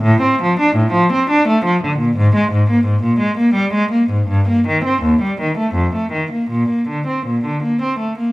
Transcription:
cello
0.02 A2
0.22 C4
0.43 F3
0.60 D4
0.76 A2
0.93 F3
1.13 C4
1.30 D4
1.48 A3
1.65 F3
1.83 D3
1.99 A#2
2.17 G#2
2.35 G#3
2.52 G#2
2.70 A#3
2.85 G#2
3.03 A#2
3.20 G#3
3.38 A#3
3.54 G3
3.74 G#3
3.91 A#3
4.10 G#2
4.28 G2
4.49 A#3
4.68 D#3
4.85 C4
5.03 D#2
5.22 G3
5.41 D#3
5.58 A3
5.75 F2
5.95 A3
6.13 D#3
6.32 A#3
6.50 A#2
6.70 A#3
6.89 D3
7.08 C4
7.27 A#2
7.45 D3
7.64 A#3
7.82 C4
8.00 A3
8.19 A#3

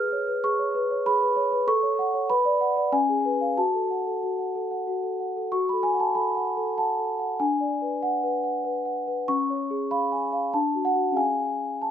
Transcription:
celesta
Already playing: G#4 B4 F6
0.12 C#5
0.28 B4
0.44 G#4 C#6
0.59 C#5
0.75 B4
0.91 C#5
1.06 G#4 B5
1.22 B4
1.37 C#5
1.52 B4
1.67 A4 C#6
1.83 C#5
1.99 F#5
2.14 C#5
2.30 B4 B5
2.45 D5
2.61 F#5
2.77 D5
2.92 C#4 G#5
3.09 G#4
3.25 B4
3.41 F5
3.57 F#4 A5
3.74 A4
3.91 F#5
4.07 A4
4.23 F#4
4.39 F#5
4.55 A4
4.71 F#5
4.87 F#4
5.03 A4
5.20 F#5
5.36 A4
5.52 F#4 C#6
5.69 A4 B5
5.83 G#5
5.94 F#5
6.00 A5
6.15 A4 B5
6.36 F#5
6.57 A4
6.78 F#5 A5
6.99 A4
7.19 F#5
7.40 D4 G#5
7.60 D5
7.82 B4
8.03 F#5
8.23 B4
8.44 F#5
8.64 B4
8.85 F#5
9.07 B4
9.28 C#4 C#6
9.50 C#5
9.71 G#4
9.91 F5 B5
10.12 G#5
10.33 F5
10.53 D4 A5
10.75 F#4
10.85 F#5
10.96 F#4 F#5
11.12 C#4 G#4 F5
11.17 G#5
11.82 A5

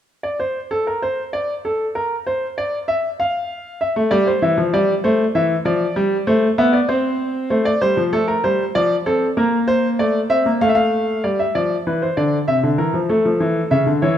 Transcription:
grand piano
0.23 D5
0.40 C5
0.71 A4
0.87 A#4
1.02 C5
1.33 D5
1.65 A4
1.95 A#4
2.27 C5
2.58 D5
2.88 E5
3.20 F5
3.81 E5
3.96 A3
4.11 G3 D5
4.27 C5
4.42 E3 E5
4.58 F3
4.74 G3 D5
5.04 A3 C5
5.35 E3 E5
5.65 F3 D5
5.96 G3
6.27 A3 C5
6.58 B3 E5
6.73 D5
6.89 C4 C5
7.50 A3 C5
7.65 D5
7.81 G3 C5
7.97 F3
8.13 A3 A4
8.28 A#4
8.44 G3 C5
8.75 F3 D5
9.06 C4 A4
9.37 A#3 A#4
9.68 C5
9.99 A3 D5
10.30 C4 E5
10.46 A#3
10.61 A3 F5
10.69 E5
10.75 F5
11.24 G3 D5
11.39 E5
11.55 F3 D5
11.87 E3 B4
12.02 C5
12.17 D3 D5
12.48 C3 E5
12.63 D3
12.78 E3 A#4
12.94 F3
13.09 A3 A4
13.25 F3
13.40 E3
13.71 C#3 E5
13.86 D3
14.02 E3 C#5

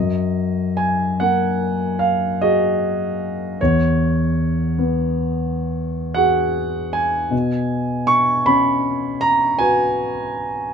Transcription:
grand piano
Already playing: F#2 D#5
0.77 G#5
1.20 A#3 F#5
1.99 F5
2.42 F#4 G#4 D#5
3.61 E2 C#5
4.78 B3
6.14 F#4 G#4 F#5
6.93 G#5
7.31 B2
8.07 C#6
8.46 C#4 B5
9.21 A#5
9.59 F#4 B4 G#5

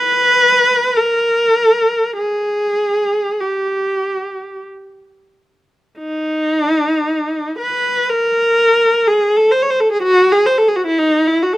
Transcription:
viola
Already playing: B4
0.96 A#4
2.16 G#4
3.41 G4
5.99 D#4
7.59 B4
8.09 A#4
9.07 G#4
9.36 A4
9.51 C5
9.62 C#5
9.70 C5
9.80 A4
9.92 G#4
10.03 F#4
10.32 G#4
10.46 C5
10.58 A4
10.68 G#4
10.76 F#4
10.86 E4
10.98 D#4
11.27 E4
11.42 F#4
11.53 A4

